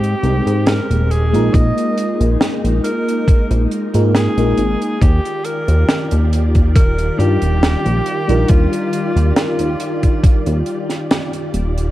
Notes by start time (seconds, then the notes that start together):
Already playing: G#2 G#3 C4 G4
0.04 closed hi-hat
0.23 C2 G#3 C4 D#4 G4 A#4, closed hi-hat
0.46 G#2, closed hi-hat
0.67 A#4, snare, closed hi-hat
0.90 D#1, closed hi-hat
1.11 A#3 D#4 G#4, closed hi-hat
1.32 A#1 G#3 A#3 D#4 F4 A#4, closed hi-hat
1.54 A#1 D#5, kick, closed hi-hat
1.78 closed hi-hat
1.98 closed hi-hat
2.21 A#1, closed hi-hat
2.41 snare, closed hi-hat
2.64 A#1, closed hi-hat
2.84 A#4, closed hi-hat
3.09 closed hi-hat
3.28 kick, closed hi-hat
3.51 A#1, closed hi-hat
3.71 closed hi-hat
3.94 G#2 G#3 A#3 D#4 F4 A#4, closed hi-hat
4.15 G#4, snare, closed hi-hat
4.37 A#1 G#3 A#3 D#4 F4 A#4, closed hi-hat
4.58 G#1, closed hi-hat
4.82 closed hi-hat
5.01 D#2 D#3 F4 G4 D5, kick, closed hi-hat
5.25 closed hi-hat
5.45 A#4, closed hi-hat
5.68 D#2, closed hi-hat
5.88 snare, closed hi-hat
6.11 D#2, closed hi-hat
6.33 closed hi-hat
6.55 kick, closed hi-hat
6.76 D#1 A#4, kick, closed hi-hat
6.98 closed hi-hat
7.18 G2 G3 D4 D#4 F4 G4 A#4, closed hi-hat
7.42 D#1, closed hi-hat
7.63 snare, closed hi-hat
7.86 A#1, closed hi-hat
8.06 closed hi-hat
8.28 A#1 G3 D4 D#4 F4 A#4, closed hi-hat
8.49 D#2 F4, kick, closed hi-hat
8.73 closed hi-hat
8.93 closed hi-hat
9.16 D#2, closed hi-hat
9.36 F4, snare, closed hi-hat
9.59 D#2, closed hi-hat
9.80 closed hi-hat
10.03 kick, closed hi-hat
10.24 kick, closed hi-hat
10.46 D#2, closed hi-hat
10.66 closed hi-hat
10.90 snare, closed hi-hat
11.11 snare, closed hi-hat
11.33 closed hi-hat
11.54 D#1, closed hi-hat
11.78 closed hi-hat